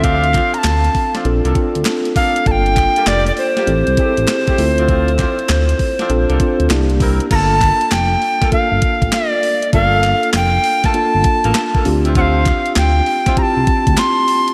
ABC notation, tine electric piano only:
X:1
M:4/4
L:1/8
Q:"Swing 16ths" 1/4=99
K:Gdor
V:1 name="Tine electric piano"
[CDFA]2 z2 [CDFA] [CDFA]2 z | [B,DFA]3 z [CEGA] [CEG^GA]2 [CEFA]- | [CEFA]2 z2 [CDFA] [CDFA] [B,DEG]2 | [B,DF]3 z [B,DFA]3 z |
[B,DFA]3 z [B,DFA]3 [CDFG]- | [CDFG]2 z2 [CEFG]3 z |]